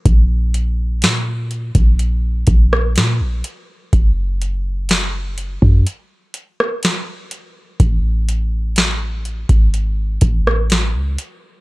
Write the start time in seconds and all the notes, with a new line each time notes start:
0.06 A#1, kick, closed hi-hat
0.54 closed hi-hat
1.02 A#2, snare, closed hi-hat
1.51 closed hi-hat
1.75 A#1, kick, closed hi-hat
1.99 closed hi-hat
2.47 A#1, kick, closed hi-hat
2.73 cross-stick
2.96 A#2, snare, closed hi-hat
3.20 A#1
3.44 closed hi-hat
3.93 F#1, kick, closed hi-hat
4.42 closed hi-hat
4.89 snare, closed hi-hat
5.38 closed hi-hat
5.62 F#2, kick
5.87 closed hi-hat
6.34 closed hi-hat
6.60 cross-stick
6.83 snare, closed hi-hat
7.31 closed hi-hat
7.80 A1, kick, closed hi-hat
8.29 closed hi-hat
8.76 snare, closed hi-hat
9.25 closed hi-hat
9.49 G#1, kick, closed hi-hat
9.74 closed hi-hat
10.21 A1, kick, closed hi-hat
10.47 cross-stick
10.70 snare, closed hi-hat
10.94 C#2
11.18 closed hi-hat